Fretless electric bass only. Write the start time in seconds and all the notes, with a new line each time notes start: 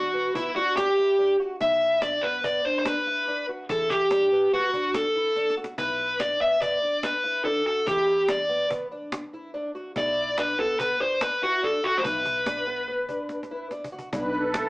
Already playing: E2
1.61 B1
3.69 E2
5.78 B1
7.87 E2
9.96 B1
12.05 B1
14.13 B1